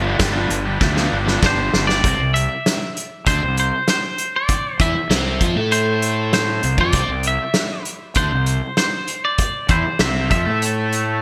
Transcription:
0.00 0.15 G1 medium
0.00 0.19 G2 medium
0.00 0.20 D3 loud
0.00 0.20 F3 medium
0.00 0.17 F3 medium
0.00 0.21 B3 medium
0.00 0.17 B3 medium
0.00 0.22 D4 medium
0.00 0.17 D4 medium
0.00 0.18 F4 medium
0.00 0.22 G4 medium
0.18 0.46 G1 medium
0.18 0.66 G2 medium
0.18 0.67 D3 medium
0.18 0.36 F3 loud
0.18 muted overdriven electric guitar stroke soft
0.18 kick loud
0.18 snare loud
0.18 closed hi-hat medium
0.22 0.34 B3 loud
0.22 0.34 D4 loud
0.22 0.34 G4 loud
0.32 0.55 F3 medium
0.32 0.55 B3 medium
0.32 0.50 B3 medium
0.32 0.54 D4 medium
0.32 0.51 D4 medium
0.32 0.54 F4 medium
0.32 0.51 G4 medium
0.37 0.50 F3 medium
0.50 0.77 G1 medium
0.50 muted overdriven electric guitar stroke soft
0.50 closed hi-hat medium
0.65 0.80 F3 medium
0.65 0.81 B3 medium
0.65 0.81 D4 medium
0.65 0.82 G4 medium
0.80 1.07 D2 medium
0.80 0.98 F3 medium
0.80 0.97 B3 medium
0.80 0.97 D4 medium
0.80 0.95 G4 medium
0.80 muted overdriven electric guitar stroke soft
0.80 kick medium
0.80 snare medium
0.95 1.16 F3 medium
0.95 1.16 B3 medium
0.95 1.12 B3 medium
0.95 1.16 D4 medium
0.95 1.13 D4 medium
0.95 1.16 F4 medium
0.95 1.14 G4 medium
0.95 snare medium
0.99 1.11 F3 medium
1.12 1.39 G1 medium
1.12 1.43 F3 medium
1.12 1.43 B3 medium
1.12 1.44 D4 medium
1.12 1.44 G4 medium
1.25 1.47 F3 medium
1.25 1.47 B3 medium
1.25 1.47 D4 medium
1.25 1.46 F4 medium
1.25 snare medium
1.43 1.69 G1 medium
1.43 1.89 G2 medium
1.43 1.89 D3 medium
1.43 1.61 F3 medium
1.43 1.60 B3 medium
1.43 1.59 D4 loud
1.43 1.58 G4 medium
1.43 1.87 C5 medium
1.43 kick loud
1.43 snare medium
1.57 1.90 B3 medium
1.57 1.89 D4 medium
1.57 1.88 G4 medium
1.57 muted overdriven electric guitar stroke soft
1.62 1.90 F3 medium
1.74 2.00 G1 medium
1.74 snare medium
1.87 2.04 B3 medium
1.87 2.03 D4 medium
1.87 2.03 G4 medium
1.87 2.31 D5 medium
1.87 snare medium
1.92 2.04 F3 medium
2.04 2.18 C2 medium
2.04 2.19 C3 medium
2.04 2.20 C4 loud
2.04 kick loud
2.04 closed hi-hat medium
2.18 2.47 C2 medium
2.18 2.45 C3 medium
2.34 2.92 E5 medium
2.34 closed hi-hat medium
2.66 snare loud
2.66 closed hi-hat medium
2.97 closed hi-hat medium
3.26 3.41 D2 medium
3.26 3.42 D3 medium
3.26 3.42 D4 medium
3.26 3.55 C5 medium
3.26 kick medium
3.26 closed hi-hat medium
3.42 3.71 C2 medium
3.42 3.67 C3 medium
3.57 3.89 C5 medium
3.57 closed hi-hat medium
3.88 4.36 C5 medium
3.88 snare loud
3.88 closed hi-hat medium
4.18 closed hi-hat medium
4.36 4.81 D5 medium
4.48 kick loud
4.48 closed hi-hat medium
4.80 4.94 E2 medium
4.80 4.94 E3 medium
4.80 4.95 E4 loud
4.80 5.38 E5 medium
4.80 kick loud
4.80 closed hi-hat medium
4.94 muted overdriven electric guitar stroke soft
4.94 muted fingered electric bass stroke soft
5.10 5.38 C2 medium
5.10 5.40 C3 medium
5.10 5.40 C4 medium
5.10 snare loud
5.10 closed hi-hat medium
5.41 5.55 F2 medium
5.41 5.55 F3 medium
5.41 5.56 F4 medium
5.41 kick loud
5.41 closed hi-hat medium
5.56 6.59 A2 medium
5.56 6.62 A3 medium
5.56 6.63 A4 loud
5.71 6.33 C5 medium
5.71 closed hi-hat medium
6.02 closed hi-hat medium
6.33 6.80 C5 medium
6.33 snare loud
6.33 closed hi-hat medium
6.63 6.77 C2 medium
6.63 6.79 C3 medium
6.63 closed hi-hat medium
6.78 6.93 F2 medium
6.78 6.93 F3 medium
6.78 6.94 F4 medium
6.78 7.27 D5 medium
6.78 kick medium
6.92 7.08 C2 medium
6.92 7.08 C3 medium
6.92 7.09 C4 loud
6.92 kick medium
6.92 closed hi-hat medium
7.08 7.37 C2 medium
7.08 7.34 C3 medium
7.23 closed hi-hat medium
7.27 7.83 E5 medium
7.54 snare loud
7.54 closed hi-hat medium
7.85 closed hi-hat medium
8.15 8.31 D2 medium
8.15 8.31 D3 medium
8.15 8.31 D4 medium
8.15 8.77 C5 medium
8.15 kick medium
8.15 closed hi-hat medium
8.32 8.61 C2 medium
8.32 8.56 C3 medium
8.46 closed hi-hat medium
8.77 9.24 C5 medium
8.77 snare loud
8.77 closed hi-hat medium
9.07 closed hi-hat medium
9.25 9.70 D5 medium
9.38 kick medium
9.38 closed hi-hat medium
9.69 9.84 E2 medium
9.69 9.84 E3 medium
9.69 9.84 E4 medium
9.69 10.00 C5 medium
9.69 kick loud
9.69 closed hi-hat medium
9.85 muted overdriven electric guitar stroke soft
9.85 muted fingered electric bass stroke soft
9.99 10.29 C2 medium
9.99 10.30 C3 medium
9.99 10.30 C4 loud
9.99 10.29 E5 loud
9.99 snare loud
9.99 closed hi-hat medium
10.30 10.45 F2 medium
10.30 10.45 F3 medium
10.30 10.45 F4 medium
10.30 11.22 E5 medium
10.30 kick medium
10.30 closed hi-hat medium
10.45 11.22 A2 medium
10.45 11.22 A3 medium
10.45 11.22 A4 loud
10.62 closed hi-hat medium
10.92 closed hi-hat medium

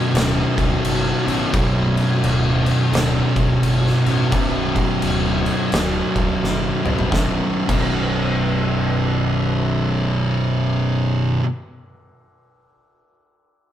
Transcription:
0.00 1.29 B1 medium
0.00 1.25 F#2 medium
0.00 1.26 B2 medium
0.13 0.42 D1 medium
0.13 1.53 B1 medium
0.13 1.52 F#2 medium
0.13 1.56 B2 medium
0.13 snare loud
0.13 crash medium
0.58 0.75 D1 medium
0.58 kick medium
0.58 crash medium
0.83 1.11 F#1 medium
0.83 crash medium
1.26 1.44 A1 medium
1.26 1.52 B1 medium
1.26 1.52 F#2 medium
1.26 1.56 B2 medium
1.26 crash medium
1.53 1.98 B0 medium
1.53 4.08 B1 medium
1.53 4.04 F#2 loud
1.53 4.04 B2 loud
1.53 kick loud
1.53 crash medium
1.97 crash medium
2.23 2.68 D1 medium
2.23 crash medium
2.66 crash medium
2.92 3.20 D1 medium
2.92 4.31 B1 medium
2.92 4.31 F#2 medium
2.92 4.34 B2 medium
2.92 snare loud
2.92 crash medium
3.36 3.53 D1 medium
3.36 kick medium
3.36 crash medium
3.63 3.90 F#1 medium
3.63 crash medium
3.87 snare soft
4.05 4.23 A1 medium
4.05 4.31 B1 medium
4.05 4.31 F#2 medium
4.05 4.34 B2 medium
4.05 crash medium
4.31 4.78 B0 medium
4.31 6.82 B1 medium
4.31 6.83 F#2 medium
4.31 6.83 B2 loud
4.31 kick loud
4.31 crash medium
4.76 kick medium
4.76 crash medium
5.02 5.48 D1 medium
5.02 crash medium
5.46 crash medium
5.71 6.01 D1 medium
5.71 7.10 B1 medium
5.71 7.11 F#2 medium
5.71 7.12 B2 medium
5.71 snare loud
5.71 crash medium
6.16 6.33 D1 medium
6.16 kick medium
6.16 crash medium
6.43 6.71 F#1 medium
6.43 snare medium
6.84 7.03 A1 medium
6.84 7.09 B1 medium
6.84 7.11 F#2 medium
6.84 7.10 B2 medium
6.84 mid tom medium
6.99 floor tom medium
7.10 7.36 B0 medium
7.10 7.67 B1 medium
7.10 7.69 F#2 medium
7.10 7.71 B2 loud
7.10 kick loud
7.10 snare medium
7.67 11.38 B0 medium
7.67 11.41 B1 medium
7.67 11.42 F#2 loud
7.67 kick loud
7.67 crash medium
7.71 11.43 B2 loud

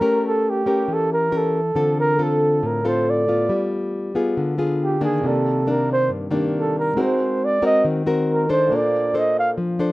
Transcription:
0.00 0.86 A3 medium
0.00 0.63 C#4 medium
0.00 0.63 G4 medium
0.00 0.25 A#4 medium
0.00 0.63 A#4 medium
0.27 0.52 A4 medium
0.50 0.95 G4 medium
0.66 1.28 C#4 medium
0.66 1.29 G4 medium
0.66 1.29 A#4 medium
0.88 1.73 E3 medium
0.93 1.12 A4 medium
1.13 1.39 A#4 medium
1.32 1.60 C#4 medium
1.32 1.60 G4 medium
1.32 1.60 A#4 medium
1.37 1.99 A4 medium
1.75 2.60 D3 medium
1.75 2.15 C4 soft
1.75 2.15 F4 medium
1.75 2.16 A4 medium
2.00 2.24 A#4 loud
2.19 2.81 C4 medium
2.19 2.81 F4 soft
2.19 2.81 A4 medium
2.23 2.68 A4 medium
2.63 3.48 A2 medium
2.63 2.89 A#4 medium
2.84 3.24 C4 medium
2.84 3.25 F4 medium
2.84 3.25 A4 medium
2.84 3.11 C5 medium
3.10 3.73 D5 medium
3.28 4.12 B3 medium
3.28 4.12 F4 medium
3.49 4.34 G3 medium
4.15 4.55 B3 medium
4.15 4.55 F4 medium
4.15 4.55 G#4 medium
4.37 5.22 D3 medium
4.58 4.98 B3 medium
4.58 4.98 F4 medium
4.58 4.99 G#4 medium
4.84 5.02 G4 medium
5.01 5.63 D#3 medium
5.01 5.63 A#3 medium
5.01 5.63 D4 medium
5.01 5.29 G#4 medium
5.21 6.29 C3 medium
5.21 6.08 C3 medium
5.21 6.31 G4 medium
5.26 6.31 A#3 medium
5.26 5.72 A4 medium
5.26 6.32 D5 medium
5.67 6.29 D#3 medium
5.67 6.29 A#3 soft
5.67 6.29 D4 medium
5.71 5.91 A#4 medium
5.93 6.11 C5 loud
6.09 6.95 G2 medium
6.31 6.97 C3 soft
6.31 6.93 D#3 medium
6.31 6.93 A#3 medium
6.31 6.94 D4 medium
6.31 6.98 G4 soft
6.31 6.97 A#4 soft
6.31 6.98 D5 medium
6.60 6.77 A4 medium
6.79 7.03 A#4 medium
6.94 8.66 G#3 medium
6.94 7.82 G#3 medium
6.94 7.59 C4 medium
6.94 8.67 D#4 soft
6.94 8.67 F#4 soft
6.94 7.59 F#4 medium
6.94 7.59 A#4 medium
6.99 8.68 A#4 soft
6.99 8.69 C5 medium
6.99 7.46 C5 medium
7.45 7.64 D5 medium
7.62 8.02 C4 medium
7.62 8.02 F#4 medium
7.62 8.03 A#4 medium
7.62 7.85 D#5 medium
7.85 8.69 D#3 medium
8.06 8.46 C4 medium
8.06 8.46 F#4 medium
8.06 8.47 A#4 medium
8.32 8.50 A#4 medium
8.49 9.11 D4 medium
8.49 9.11 A4 medium
8.49 9.11 C5 medium
8.49 8.77 C5 medium
8.68 9.92 A#2 medium
8.68 9.56 A#3 medium
8.68 9.92 D4 soft
8.68 9.92 F4 soft
8.73 9.92 A4 medium
8.73 9.92 C5 medium
8.73 9.20 D5 medium
9.14 9.57 D4 medium
9.14 9.58 A4 medium
9.14 9.58 C5 medium
9.14 9.38 D#5 medium
9.39 9.51 F5 medium
9.58 9.92 F3 medium
9.79 9.92 D4 medium
9.79 9.92 A4 medium
9.79 9.92 C5 medium

